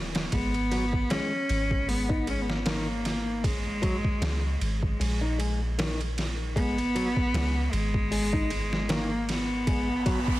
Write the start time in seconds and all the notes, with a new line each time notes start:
Already playing: D#1
0.15 snare, ride
0.32 G#1 G#3 B3, kick, ride
0.54 ride
0.71 F#3, ride
0.93 kick
1.10 G#3 C#4, snare, ride
1.49 G#1, ride
1.71 kick
1.88 G#3 B3, open hi-hat
2.09 D#4, kick
2.27 G#3 C#4, ride
2.41 B3
2.50 A#3, snare
2.57 B3
2.66 D#3 A#3, snare, ride
3.05 snare, ride
3.43 G#3, kick, ride
3.82 F#3, kick, ride
4.04 kick
4.21 C#2 G#3, snare, ride
4.61 G#1, ride
4.83 kick
5.00 A#1 G#3, ride
5.21 D#4
5.38 G#3, ride
5.78 D#3, snare, ride
6.01 ride
6.18 snare, ride
6.56 G#1 G#3 B3, kick, ride
6.78 ride
6.95 F#3, ride
7.17 kick
7.34 C#2 G#3, snare, ride
7.72 G#1 G#3, ride
7.94 kick
8.11 G#3, open hi-hat
8.33 D#4, kick
8.50 G#3, ride
8.73 snare
8.89 D#3 A#3, snare, ride
9.29 B3, snare, ride
9.67 G#3, kick, ride, noise sweep
10.06 F#3, kick, ride
10.28 kick